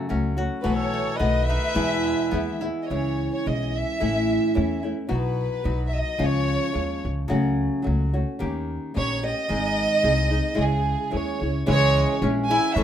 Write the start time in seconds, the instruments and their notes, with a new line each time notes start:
Already playing: koto F#3 A3 B3 E4
0.09 upright bass C#2, nylon-string guitar F#3 A3 C#4 F#4, koto C#4
0.37 nylon-string guitar F#3 A3 C#4 F#4, koto F#4
0.62 upright bass B1, nylon-string guitar B2 E3 A3 B3 F#4, koto F#3, trumpet F#4, violin section B4
0.76 trumpet A4, violin section C#5
0.94 koto A3
1.16 nylon-string guitar D#3 A3, koto B3, trumpet B4, violin section D#5
1.20 upright bass B1, nylon-string guitar B3 F#4
1.44 trumpet B4, violin section E5
1.50 koto D#4
1.74 nylon-string guitar E2 B2 E3 G#3 B3 E4, upright bass E2, koto E3
2.04 koto G#3
2.31 upright bass D#2, nylon-string guitar E3 G#3 B3 E4, koto B3
2.61 nylon-string guitar E3 G#3 B3 E4, koto E4
2.82 violin section D#5
2.89 upright bass C#2, nylon-string guitar C#3 E3 G#3 C#4 E4, violin section C#5
3.33 violin section C#5
3.46 upright bass B1, nylon-string guitar E3 G#3 C#4 E4, violin section D#5
3.77 violin section E5
4.00 upright bass A1, nylon-string guitar A2 E3 A3 C#4 E4
4.55 upright bass E2, nylon-string guitar E3 A3 C#4 E4
4.83 nylon-string guitar A3 C#4 E4
5.09 upright bass B1, nylon-string guitar B2 F#3 B3 D#4 F#4
5.13 violin section B4
5.64 upright bass B1, nylon-string guitar F#3 B3 D#4 F#4
5.90 violin section E5
5.98 violin section D#5
6.18 upright bass C#2, nylon-string guitar C#3 F3 G#3 C#4 F4
6.24 violin section C#5
6.73 upright bass D#2, nylon-string guitar F3 G#3 C#4 F4
7.05 upright bass C#2
7.28 upright bass C#2, nylon-string guitar C#3 F#3 A3 C#4 F#4
7.82 nylon-string guitar F#3 A3 C#4 F#4
7.87 upright bass C#2
8.13 nylon-string guitar A3 C#4 F#4
8.39 upright bass D#2, nylon-string guitar D#3 A#3 C#4 G4
8.94 upright bass A#1, nylon-string guitar D#3 A#3 C#4 G4, violin section C#5
9.23 nylon-string guitar A#3 C#4 G4, violin section D#5
9.48 upright bass G#1, nylon-string guitar G#2 D#3 G#3 C4 D#4 G#4
10.02 upright bass C2, nylon-string guitar G#3 C4 D#4 G#4
10.29 nylon-string guitar G#3 C4 D#4 G#4
10.55 upright bass C#2, nylon-string guitar C#3 G#3 C#4 E4 G#4
10.59 violin section G#4
11.11 upright bass D#2, nylon-string guitar G#3 C#4 E4 G#4, violin section C#5
11.40 upright bass C#2, nylon-string guitar C#4 E4 G#4
11.66 upright bass C#2, nylon-string guitar C#3 G#3 C#4 E4 G#4, koto E3, trumpet G#3, violin section C#5
11.97 koto G#3
12.22 upright bass A#1, nylon-string guitar G#3 C#4 E4 G#4, koto C#4
12.49 nylon-string guitar C#4 E4 G#4, koto E4, trumpet E4, violin section G#5
12.72 trumpet C#4, violin section E5
12.76 upright bass A1, nylon-string guitar A2 E3 A3 C#4 A4, koto E3